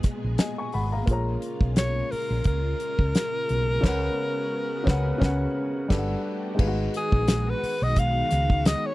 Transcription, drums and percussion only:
0, 0, Header, 1, 2, 480
1, 0, Start_track
1, 0, Tempo, 688863
1, 749, Time_signature, 4, 2, 24, 8
1, 6234, End_track
2, 0, Start_track
2, 0, Title_t, "Drums"
2, 22, Note_on_c, 9, 42, 57
2, 25, Note_on_c, 9, 38, 35
2, 28, Note_on_c, 9, 36, 81
2, 92, Note_off_c, 9, 42, 0
2, 94, Note_off_c, 9, 38, 0
2, 98, Note_off_c, 9, 36, 0
2, 266, Note_on_c, 9, 42, 94
2, 271, Note_on_c, 9, 38, 113
2, 336, Note_off_c, 9, 42, 0
2, 340, Note_off_c, 9, 38, 0
2, 505, Note_on_c, 9, 46, 37
2, 574, Note_off_c, 9, 46, 0
2, 748, Note_on_c, 9, 42, 72
2, 749, Note_on_c, 9, 36, 108
2, 818, Note_off_c, 9, 42, 0
2, 819, Note_off_c, 9, 36, 0
2, 990, Note_on_c, 9, 42, 61
2, 1059, Note_off_c, 9, 42, 0
2, 1119, Note_on_c, 9, 36, 81
2, 1189, Note_off_c, 9, 36, 0
2, 1227, Note_on_c, 9, 42, 93
2, 1231, Note_on_c, 9, 38, 107
2, 1296, Note_off_c, 9, 42, 0
2, 1301, Note_off_c, 9, 38, 0
2, 1477, Note_on_c, 9, 46, 54
2, 1546, Note_off_c, 9, 46, 0
2, 1702, Note_on_c, 9, 42, 88
2, 1710, Note_on_c, 9, 36, 80
2, 1771, Note_off_c, 9, 42, 0
2, 1780, Note_off_c, 9, 36, 0
2, 1951, Note_on_c, 9, 42, 56
2, 2020, Note_off_c, 9, 42, 0
2, 2082, Note_on_c, 9, 36, 78
2, 2151, Note_off_c, 9, 36, 0
2, 2194, Note_on_c, 9, 42, 96
2, 2198, Note_on_c, 9, 38, 108
2, 2263, Note_off_c, 9, 42, 0
2, 2268, Note_off_c, 9, 38, 0
2, 2433, Note_on_c, 9, 42, 49
2, 2502, Note_off_c, 9, 42, 0
2, 2673, Note_on_c, 9, 36, 91
2, 2675, Note_on_c, 9, 49, 74
2, 2678, Note_on_c, 9, 38, 90
2, 2743, Note_off_c, 9, 36, 0
2, 2744, Note_off_c, 9, 49, 0
2, 2747, Note_off_c, 9, 38, 0
2, 3394, Note_on_c, 9, 36, 98
2, 3399, Note_on_c, 9, 38, 99
2, 3463, Note_off_c, 9, 36, 0
2, 3468, Note_off_c, 9, 38, 0
2, 3634, Note_on_c, 9, 36, 98
2, 3641, Note_on_c, 9, 38, 105
2, 3704, Note_off_c, 9, 36, 0
2, 3710, Note_off_c, 9, 38, 0
2, 4113, Note_on_c, 9, 36, 98
2, 4113, Note_on_c, 9, 49, 76
2, 4116, Note_on_c, 9, 38, 94
2, 4182, Note_off_c, 9, 49, 0
2, 4183, Note_off_c, 9, 36, 0
2, 4185, Note_off_c, 9, 38, 0
2, 4592, Note_on_c, 9, 36, 102
2, 4593, Note_on_c, 9, 49, 89
2, 4661, Note_off_c, 9, 36, 0
2, 4662, Note_off_c, 9, 49, 0
2, 4836, Note_on_c, 9, 42, 73
2, 4906, Note_off_c, 9, 42, 0
2, 4963, Note_on_c, 9, 36, 87
2, 5033, Note_off_c, 9, 36, 0
2, 5070, Note_on_c, 9, 42, 98
2, 5075, Note_on_c, 9, 38, 109
2, 5140, Note_off_c, 9, 42, 0
2, 5145, Note_off_c, 9, 38, 0
2, 5320, Note_on_c, 9, 46, 58
2, 5390, Note_off_c, 9, 46, 0
2, 5548, Note_on_c, 9, 42, 89
2, 5551, Note_on_c, 9, 36, 82
2, 5618, Note_off_c, 9, 42, 0
2, 5621, Note_off_c, 9, 36, 0
2, 5788, Note_on_c, 9, 42, 62
2, 5790, Note_on_c, 9, 38, 38
2, 5857, Note_off_c, 9, 42, 0
2, 5860, Note_off_c, 9, 38, 0
2, 5921, Note_on_c, 9, 36, 85
2, 5991, Note_off_c, 9, 36, 0
2, 6031, Note_on_c, 9, 42, 112
2, 6035, Note_on_c, 9, 38, 109
2, 6100, Note_off_c, 9, 42, 0
2, 6105, Note_off_c, 9, 38, 0
2, 6234, End_track
0, 0, End_of_file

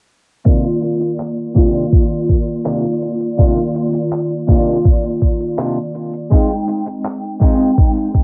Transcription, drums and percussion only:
0, 0, Header, 1, 2, 480
1, 0, Start_track
1, 0, Key_signature, -3, "minor"
1, 0, Tempo, 731707
1, 304, Time_signature, 4, 2, 24, 8
1, 5402, End_track
2, 0, Start_track
2, 0, Title_t, "Drums"
2, 303, Note_on_c, 9, 36, 106
2, 303, Note_on_c, 9, 42, 51
2, 369, Note_off_c, 9, 36, 0
2, 369, Note_off_c, 9, 42, 0
2, 426, Note_on_c, 9, 42, 26
2, 491, Note_off_c, 9, 42, 0
2, 544, Note_on_c, 9, 42, 92
2, 610, Note_off_c, 9, 42, 0
2, 666, Note_on_c, 9, 42, 53
2, 731, Note_off_c, 9, 42, 0
2, 784, Note_on_c, 9, 39, 103
2, 850, Note_off_c, 9, 39, 0
2, 904, Note_on_c, 9, 42, 26
2, 970, Note_off_c, 9, 42, 0
2, 1023, Note_on_c, 9, 36, 96
2, 1024, Note_on_c, 9, 42, 85
2, 1089, Note_off_c, 9, 36, 0
2, 1089, Note_off_c, 9, 42, 0
2, 1143, Note_on_c, 9, 42, 50
2, 1208, Note_off_c, 9, 42, 0
2, 1263, Note_on_c, 9, 36, 105
2, 1263, Note_on_c, 9, 42, 51
2, 1328, Note_off_c, 9, 42, 0
2, 1329, Note_off_c, 9, 36, 0
2, 1385, Note_on_c, 9, 42, 26
2, 1451, Note_off_c, 9, 42, 0
2, 1503, Note_on_c, 9, 42, 90
2, 1504, Note_on_c, 9, 36, 56
2, 1569, Note_off_c, 9, 36, 0
2, 1569, Note_off_c, 9, 42, 0
2, 1625, Note_on_c, 9, 42, 51
2, 1690, Note_off_c, 9, 42, 0
2, 1742, Note_on_c, 9, 39, 112
2, 1808, Note_off_c, 9, 39, 0
2, 1864, Note_on_c, 9, 42, 25
2, 1929, Note_off_c, 9, 42, 0
2, 1982, Note_on_c, 9, 42, 86
2, 2048, Note_off_c, 9, 42, 0
2, 2103, Note_on_c, 9, 42, 52
2, 2168, Note_off_c, 9, 42, 0
2, 2223, Note_on_c, 9, 36, 111
2, 2223, Note_on_c, 9, 42, 51
2, 2289, Note_off_c, 9, 36, 0
2, 2289, Note_off_c, 9, 42, 0
2, 2344, Note_on_c, 9, 42, 26
2, 2410, Note_off_c, 9, 42, 0
2, 2462, Note_on_c, 9, 42, 91
2, 2528, Note_off_c, 9, 42, 0
2, 2584, Note_on_c, 9, 42, 51
2, 2650, Note_off_c, 9, 42, 0
2, 2705, Note_on_c, 9, 39, 105
2, 2705, Note_on_c, 9, 42, 49
2, 2770, Note_off_c, 9, 39, 0
2, 2770, Note_off_c, 9, 42, 0
2, 2826, Note_on_c, 9, 42, 25
2, 2891, Note_off_c, 9, 42, 0
2, 2943, Note_on_c, 9, 36, 103
2, 2945, Note_on_c, 9, 42, 91
2, 3009, Note_off_c, 9, 36, 0
2, 3010, Note_off_c, 9, 42, 0
2, 3066, Note_on_c, 9, 42, 51
2, 3131, Note_off_c, 9, 42, 0
2, 3183, Note_on_c, 9, 42, 52
2, 3184, Note_on_c, 9, 36, 107
2, 3249, Note_off_c, 9, 36, 0
2, 3249, Note_off_c, 9, 42, 0
2, 3306, Note_on_c, 9, 42, 26
2, 3371, Note_off_c, 9, 42, 0
2, 3424, Note_on_c, 9, 36, 58
2, 3424, Note_on_c, 9, 42, 86
2, 3490, Note_off_c, 9, 36, 0
2, 3490, Note_off_c, 9, 42, 0
2, 3547, Note_on_c, 9, 42, 51
2, 3612, Note_off_c, 9, 42, 0
2, 3665, Note_on_c, 9, 39, 121
2, 3730, Note_off_c, 9, 39, 0
2, 3786, Note_on_c, 9, 42, 25
2, 3852, Note_off_c, 9, 42, 0
2, 3904, Note_on_c, 9, 42, 92
2, 3970, Note_off_c, 9, 42, 0
2, 4025, Note_on_c, 9, 42, 54
2, 4091, Note_off_c, 9, 42, 0
2, 4144, Note_on_c, 9, 36, 111
2, 4145, Note_on_c, 9, 42, 51
2, 4209, Note_off_c, 9, 36, 0
2, 4211, Note_off_c, 9, 42, 0
2, 4268, Note_on_c, 9, 42, 25
2, 4333, Note_off_c, 9, 42, 0
2, 4386, Note_on_c, 9, 42, 92
2, 4451, Note_off_c, 9, 42, 0
2, 4506, Note_on_c, 9, 42, 51
2, 4572, Note_off_c, 9, 42, 0
2, 4624, Note_on_c, 9, 39, 111
2, 4624, Note_on_c, 9, 42, 49
2, 4690, Note_off_c, 9, 39, 0
2, 4690, Note_off_c, 9, 42, 0
2, 4746, Note_on_c, 9, 42, 26
2, 4811, Note_off_c, 9, 42, 0
2, 4864, Note_on_c, 9, 36, 106
2, 4866, Note_on_c, 9, 42, 84
2, 4929, Note_off_c, 9, 36, 0
2, 4931, Note_off_c, 9, 42, 0
2, 4986, Note_on_c, 9, 42, 50
2, 5052, Note_off_c, 9, 42, 0
2, 5103, Note_on_c, 9, 36, 110
2, 5105, Note_on_c, 9, 42, 52
2, 5169, Note_off_c, 9, 36, 0
2, 5171, Note_off_c, 9, 42, 0
2, 5226, Note_on_c, 9, 42, 25
2, 5292, Note_off_c, 9, 42, 0
2, 5343, Note_on_c, 9, 36, 58
2, 5345, Note_on_c, 9, 42, 87
2, 5402, Note_off_c, 9, 36, 0
2, 5402, Note_off_c, 9, 42, 0
2, 5402, End_track
0, 0, End_of_file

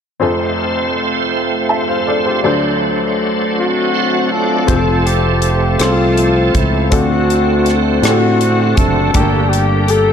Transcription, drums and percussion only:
0, 0, Header, 1, 2, 480
1, 0, Start_track
1, 0, Key_signature, -1, "major"
1, 0, Tempo, 743679
1, 146, Time_signature, 6, 3, 24, 8
1, 6536, End_track
2, 0, Start_track
2, 0, Title_t, "Drums"
2, 3022, Note_on_c, 9, 42, 60
2, 3024, Note_on_c, 9, 36, 72
2, 3087, Note_off_c, 9, 42, 0
2, 3088, Note_off_c, 9, 36, 0
2, 3270, Note_on_c, 9, 42, 34
2, 3335, Note_off_c, 9, 42, 0
2, 3498, Note_on_c, 9, 42, 34
2, 3562, Note_off_c, 9, 42, 0
2, 3740, Note_on_c, 9, 42, 60
2, 3753, Note_on_c, 9, 37, 83
2, 3805, Note_off_c, 9, 42, 0
2, 3817, Note_off_c, 9, 37, 0
2, 3985, Note_on_c, 9, 42, 38
2, 4050, Note_off_c, 9, 42, 0
2, 4225, Note_on_c, 9, 42, 46
2, 4226, Note_on_c, 9, 36, 64
2, 4290, Note_off_c, 9, 42, 0
2, 4291, Note_off_c, 9, 36, 0
2, 4465, Note_on_c, 9, 42, 70
2, 4467, Note_on_c, 9, 36, 79
2, 4529, Note_off_c, 9, 42, 0
2, 4531, Note_off_c, 9, 36, 0
2, 4713, Note_on_c, 9, 42, 36
2, 4778, Note_off_c, 9, 42, 0
2, 4943, Note_on_c, 9, 42, 35
2, 4961, Note_on_c, 9, 37, 24
2, 5008, Note_off_c, 9, 42, 0
2, 5026, Note_off_c, 9, 37, 0
2, 5186, Note_on_c, 9, 42, 60
2, 5198, Note_on_c, 9, 37, 86
2, 5250, Note_off_c, 9, 42, 0
2, 5263, Note_off_c, 9, 37, 0
2, 5427, Note_on_c, 9, 42, 42
2, 5491, Note_off_c, 9, 42, 0
2, 5662, Note_on_c, 9, 42, 45
2, 5664, Note_on_c, 9, 36, 77
2, 5727, Note_off_c, 9, 42, 0
2, 5729, Note_off_c, 9, 36, 0
2, 5901, Note_on_c, 9, 42, 67
2, 5904, Note_on_c, 9, 36, 76
2, 5966, Note_off_c, 9, 42, 0
2, 5969, Note_off_c, 9, 36, 0
2, 6152, Note_on_c, 9, 42, 38
2, 6216, Note_off_c, 9, 42, 0
2, 6379, Note_on_c, 9, 42, 37
2, 6444, Note_off_c, 9, 42, 0
2, 6536, End_track
0, 0, End_of_file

